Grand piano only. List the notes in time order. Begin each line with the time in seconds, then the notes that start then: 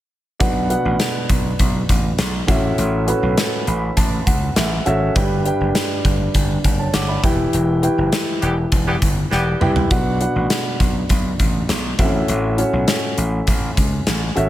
0.40 B2 D4 F#4 B4 F#5
0.69 D4 F#4 B4 F#5
2.47 A2 C#4 F#4 A4 E5
3.07 C#4 F#4 A4 B4
3.67 B5
3.97 A5
4.27 F#5
4.57 E5
4.86 C#4 F#4 A4 E5
5.15 G2 D4 G4 B4
5.45 D4 G4 B4 G5
6.79 C#5 A5
6.94 F#5 D6
7.08 D5 B5
7.23 E3 E4 G4 B4 G5
7.82 E4 G4 B4 G5
9.61 E4 G4 B4 G5
9.90 B2 D4 F#4 B4 F#5
10.20 D4 F#4 B4 F#5
11.98 A2 C4 F#4 A4 E5
12.05 C#4
12.58 C#4 F#4 A4 C#5
14.35 C#4 F#4 A4 E5